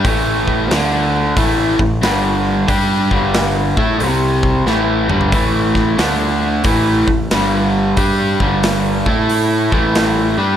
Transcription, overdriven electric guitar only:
X:1
M:4/4
L:1/8
Q:"Swing" 1/4=91
K:Am
V:1 name="Overdriven electric guitar" clef=bass
[A,,E,A,]2 [D,A,D]2 [A,,E,A,] [A,,E,] [G,,D,G,]2 | [G,DG] [G,,D,G,]2 [A,EA] [C,G,C]2 [A,,E,A,] [G,,D,G,] | [A,,E,A,]2 [D,A,D]2 [A,,E,A,] [A,,E,] [G,,D,G,]2 | [G,DG] [G,,D,G,]2 [A,EA]2 [A,,E,A,]2 [G,DG] |]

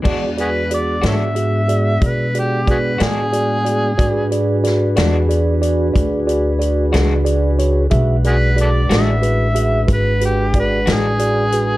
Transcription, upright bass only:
X:1
M:12/8
L:1/8
Q:3/8=61
K:Emix
V:1 name="Upright bass" clef=bass
E,,3 G,,3 B,,3 A,,3 | G,,3 E,,3 D,,3 C,,3 | B,,,3 A,,,3 G,,,3 A,,,3 |]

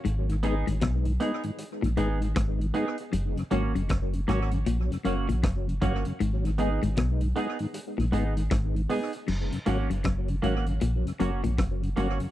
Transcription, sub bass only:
X:1
M:4/4
L:1/16
Q:"Swing 16ths" 1/4=78
K:F#
V:1 name="Sub bass" clef=bass
G,,,3 G,,, B,,,2 z3 A,,, G,,,2 G,,,2 z2 | F,,, z G,,, F,,, F,,,2 G,,,2 A,,, z F,,, A,,, F,,,2 =G,,, z | G,,,3 G,,, B,,,2 z3 A,,, G,,,2 G,,,2 z2 | F,,, z G,,, F,,, F,,,2 G,,,2 A,,, z F,,, A,,, F,,,2 =G,,, z |]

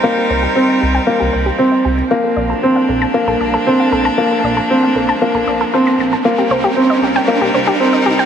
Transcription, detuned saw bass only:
X:1
M:4/4
L:1/16
Q:1/4=116
K:Bb
V:1 name="Detuned saw bass" clef=bass
z2 C,, z3 C,, z2 C,, C,, z3 C,, z | z2 B,,, z3 B,,, z2 B,,, B,,, z3 B,,, z | z2 B,,, z3 B,,, z2 B,,, B,,, z3 B,,, z | z2 C,, z3 C,, z2 C,, C,, z3 C,, z |]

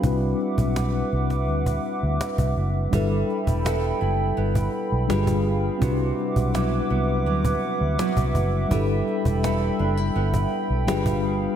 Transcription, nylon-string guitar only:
X:1
M:4/4
L:1/16
Q:1/4=83
K:G
V:1 name="Nylon-string guitar"
z16 | G,4 [B,EA]2 E2 B,4 G,4 | C,4 [F,B,E]2 B,2 F,4 [F,B,E]4 | G,4 [B,EA]2 D E B,4 G,4 |]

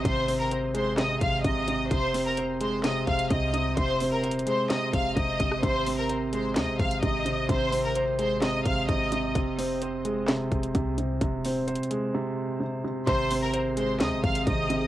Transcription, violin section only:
X:1
M:4/4
L:1/16
Q:1/4=129
K:Ab
V:1 name="Violin section"
[cc']3 [Bb] z2 [cc']2 [ee']2 [ff']2 [ee']4 | [cc']3 [Bb] z2 [cc']2 [ee']2 [ff']2 [ee']4 | [cc']3 [Bb] z2 [cc']2 [ee']2 [ff']2 [ee']4 | [cc']3 [Bb] z2 [cc']2 [ee']2 [ff']2 [ee']4 |
[cc']3 [Bb] z2 [cc']2 [ee']2 [ff']2 [ee']4 | z16 | z16 | [cc']3 [Bb] z2 [cc']2 [ee']2 [ff']2 [ee']4 |]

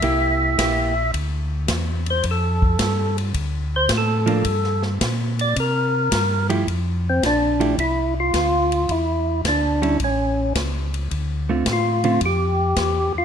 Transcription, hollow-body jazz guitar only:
X:1
M:4/4
L:1/8
Q:"Swing" 1/4=108
K:F
V:1 name="Hollow-body jazz guitar"
[B,EG]2 [B,EG] z4 z | z6 z [F,B,D] | z6 z [F,A,EG] | z3 [F,A,EG] z4 |
z3 [G,_DE] z4 | z [D,A,CF] z [D,A,CF] z4 |]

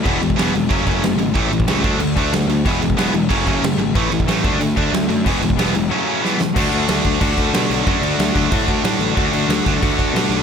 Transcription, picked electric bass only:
X:1
M:4/4
L:1/8
Q:1/4=184
K:Dlyd
V:1 name="Picked electric bass" clef=bass
E,,, E,,, E,,, =F,,, ^F,,, F,,, F,,, G,,, | A,,, A,,, C,, D,, D,, D,, D,, D,, | E,,, E,,, E,,, E,,, F,,, F,,, F,,, G,,, | A,,, A,,, A,,, D,, D,, D,, D,, F,, |
E,,, E,,, E,,, E,,, z4 | D,, D,, D,, D,, D,, D,, B,, B,,, | F,, D,, D,, D,, A,, D,, A,, A,,, | D,, D,, D,, D,, D,, D,, B,, B,,, |]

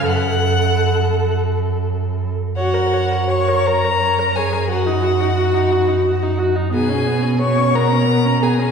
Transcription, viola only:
X:1
M:6/8
L:1/16
Q:3/8=58
K:F#m
V:1 name="Viola"
A8- A3 z | [K:F#] c A c A c A c A c A c A | F D F D F D F D F D F D | B, C B, C B, C B, C B, C B, C |]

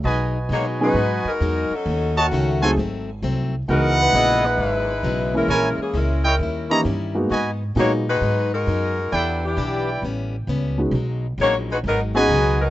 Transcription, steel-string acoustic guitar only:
X:1
M:4/4
L:1/8
Q:"Swing" 1/4=132
K:B
V:1 name="Steel-string acoustic guitar" clef=bass
[B,,F,G,D] z [B,,F,G,D] z [B,,F,G,D] z [B,,F,G,D] z | [D,=A,CF] z [D,A,CF] z [G,,F,A,^B,] z [G,,F,A,B,] z | [C,F,B,E] z [C,F,B,E] z [C,F,B,E] z [C,F,B,E] z | [A,,G,CE] z [A,,G,CE] z [D,=G,CE] z [D,G,CE] z |
[G,,F,B,D] z [G,,F,B,D] z [G,,F,B,D] z [G,,F,B,D] z | [E,B,=D=G] z [E,B,DG] z [=A,,=G,B,C] z [A,,G,B,C] z | [B,,F,G,D] z [B,,F,G,D] z [B,,F,G,D] z [B,,F,G,D] z |]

